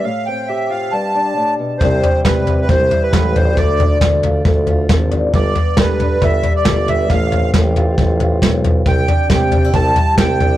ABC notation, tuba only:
X:1
M:4/4
L:1/8
Q:1/4=136
K:C
V:1 name="Tuba" clef=bass
z8 | C,, z C,2 C,, z A,,,2 | D,,2 D,,2 D,,2 _A,,,2 | G,,, z G,,2 G,,, z G,,,2 |
A,,,2 A,,,2 A,,,2 B,,,2 | C,, z C,2 C,, z C,,2 |]